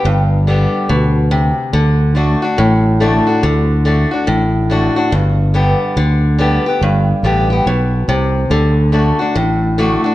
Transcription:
0.04 fretless electric bass G1, steel-string acoustic guitar G2
0.47 steel-string acoustic guitar D3 G3 B3 G4
0.89 fretless electric bass D2, steel-string acoustic guitar B2
1.31 steel-string acoustic guitar C3
1.73 fretless electric bass D2, steel-string acoustic guitar D3
2.15 steel-string acoustic guitar D3 A3 D4 F#4
2.42 steel-string acoustic guitar D4 F#4
2.58 fretless electric bass A1, steel-string acoustic guitar A2
3.00 steel-string acoustic guitar D3 A3 D4 F#4
3.27 steel-string acoustic guitar D4 F#4
3.43 fretless electric bass D2, steel-string acoustic guitar D3
3.85 steel-string acoustic guitar D3 A3 D4 F#4
4.11 steel-string acoustic guitar D4 F#4
4.27 fretless electric bass A1, steel-string acoustic guitar A2
4.70 steel-string acoustic guitar D3 A3 D4 F#4
4.96 steel-string acoustic guitar D4 F#4
5.12 fretless electric bass G1, steel-string acoustic guitar G2
5.54 steel-string acoustic guitar D3 G3 B3 G4
5.96 fretless electric bass D2, steel-string acoustic guitar D3
6.38 steel-string acoustic guitar D3 G3 B3 G4
6.66 steel-string acoustic guitar B3 G4
6.81 fretless electric bass G1, steel-string acoustic guitar G2
7.23 fretless electric bass A1, steel-string acoustic guitar D3 G3 B3 G4
7.50 steel-string acoustic guitar B3 G4
7.66 fretless electric bass B1, steel-string acoustic guitar B2
8.08 fretless electric bass C2, steel-string acoustic guitar C3
8.50 fretless electric bass D2, steel-string acoustic guitar D3
8.92 steel-string acoustic guitar D3 A3 D4 F#4
9.19 steel-string acoustic guitar D4 F#4
9.35 fretless electric bass A1, steel-string acoustic guitar A2
9.78 steel-string acoustic guitar D3 A3 D4 F#4
10.04 steel-string acoustic guitar D4 F#4

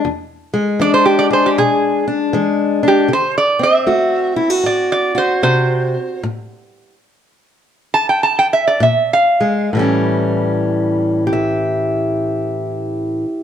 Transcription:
0.05 steel-string acoustic guitar E2
0.54 steel-string acoustic guitar G#3
0.79 steel-string acoustic guitar E3 D4, resonator guitar played with a steel bar D5
0.94 resonator guitar played with a steel bar C5
1.06 resonator guitar played with a steel bar G4
1.19 resonator guitar played with a steel bar D5
1.31 steel-string acoustic guitar G#4, resonator guitar played with a steel bar C5
1.46 resonator guitar played with a steel bar G4
1.58 steel-string acoustic guitar B2, resonator guitar played with a steel bar G#4
2.08 steel-string acoustic guitar D4
2.33 steel-string acoustic guitar E3 G#3
2.83 steel-string acoustic guitar D4
2.88 resonator guitar played with a steel bar G4
3.08 steel-string acoustic guitar D3
3.13 resonator guitar played with a steel bar C5
3.38 resonator guitar played with a steel bar D5
3.59 steel-string acoustic guitar C4
3.63 resonator guitar played with a steel bar E5
3.87 steel-string acoustic guitar A3 F#4
4.36 steel-string acoustic guitar E4
4.50 steel-string acoustic guitar F#4
4.64 steel-string acoustic guitar A2, resonator guitar played with a steel bar D5
4.92 resonator guitar played with a steel bar D5
5.15 steel-string acoustic guitar F#4, resonator guitar played with a steel bar C5
5.43 steel-string acoustic guitar C3, resonator guitar played with a steel bar C5
6.23 steel-string acoustic guitar A2
7.94 resonator guitar played with a steel bar A5
8.09 resonator guitar played with a steel bar G5
8.23 resonator guitar played with a steel bar A5
8.39 resonator guitar played with a steel bar G5
8.53 resonator guitar played with a steel bar E5
8.67 resonator guitar played with a steel bar D5
8.80 steel-string acoustic guitar A#2, resonator guitar played with a steel bar E5
9.13 resonator guitar played with a steel bar F5
9.40 steel-string acoustic guitar G#3
9.73 steel-string acoustic guitar A2 E3 G3
9.79 steel-string acoustic guitar C#4 G4
11.27 steel-string acoustic guitar G4
11.33 steel-string acoustic guitar E5

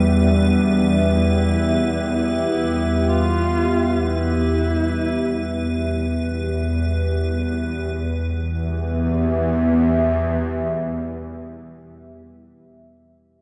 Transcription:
Already playing: synth drone E2 G3, analog synth pad B3 G4 E5, ambient pad B4
0.20 horsehead fiddle D4
1.16 horsehead fiddle E4
2.13 horsehead fiddle E4
3.09 horsehead fiddle F4
4.06 horsehead fiddle E4
7.94 synth drone E2 E3, analog synth pad B3
8.10 analog synth pad G4
8.24 analog synth pad E5

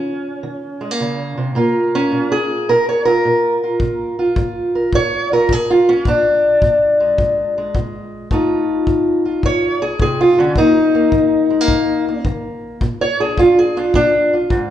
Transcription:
Already playing: steel-string acoustic guitar D#3 C#4
0.43 steel-string acoustic guitar D#3
0.81 steel-string acoustic guitar G#3
0.91 steel-string acoustic guitar A#3
1.00 steel-string acoustic guitar C#3
1.37 steel-string acoustic guitar C3
1.55 steel-string acoustic guitar A#2 A#3 F4 A#4
1.95 steel-string acoustic guitar C#4
2.12 steel-string acoustic guitar A#2
2.32 steel-string acoustic guitar G#4
2.69 steel-string acoustic guitar A#2 A#4
2.89 steel-string acoustic guitar C#5
3.05 steel-string acoustic guitar F4 A#4
3.25 steel-string acoustic guitar A#2
3.64 steel-string acoustic guitar F4
3.80 steel-string acoustic guitar A#2, kick
4.19 steel-string acoustic guitar F4
4.36 steel-string acoustic guitar A#2, kick
4.75 steel-string acoustic guitar A#4
4.93 steel-string acoustic guitar A#2 C#5, kick
5.32 steel-string acoustic guitar F4 A#4
5.49 steel-string acoustic guitar A#2 G#4, kick
5.70 steel-string acoustic guitar F4
5.89 steel-string acoustic guitar C#4
6.05 steel-string acoustic guitar A#2 D4, kick
6.62 steel-string acoustic guitar A#2, kick
7.00 steel-string acoustic guitar G#3
7.18 steel-string acoustic guitar A#2, kick
7.58 steel-string acoustic guitar G#3
7.75 steel-string acoustic guitar A#2, kick
8.31 steel-string acoustic guitar F2 A3 D#4 F4, kick
8.87 steel-string acoustic guitar F2, kick
9.25 steel-string acoustic guitar F4
9.43 steel-string acoustic guitar F2 C#5, kick
9.82 steel-string acoustic guitar G#4
10.00 steel-string acoustic guitar C3 G#4, kick
10.21 steel-string acoustic guitar F4
10.38 steel-string acoustic guitar D3 C#4
10.56 steel-string acoustic guitar D#3 A#3 D#4, kick
10.95 steel-string acoustic guitar A#3
11.12 steel-string acoustic guitar D#3, kick
11.50 steel-string acoustic guitar G#3
11.61 steel-string acoustic guitar A#3
11.68 steel-string acoustic guitar D#3, kick
12.08 steel-string acoustic guitar A#3
12.25 steel-string acoustic guitar D#3, kick
12.81 steel-string acoustic guitar A#2, kick
13.01 steel-string acoustic guitar C#5
13.20 steel-string acoustic guitar D4 G#4
13.38 steel-string acoustic guitar A#2 F4, kick
13.59 steel-string acoustic guitar G#4
13.77 steel-string acoustic guitar D4 F4
13.94 steel-string acoustic guitar A#2 D4, kick
14.33 steel-string acoustic guitar F4
14.50 steel-string acoustic guitar G#2, kick

